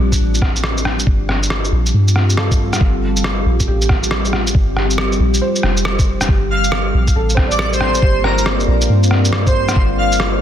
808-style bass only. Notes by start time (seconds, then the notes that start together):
0.00 A#1
0.20 A1
1.07 G1
1.72 A#1
1.94 G2
2.81 G1
3.46 A#1
3.68 A1
4.55 G1
5.20 A#1
5.64 F1
6.29 G1
6.94 A#1
7.16 A1
8.03 G1
8.68 A#1
8.90 G2
9.76 G1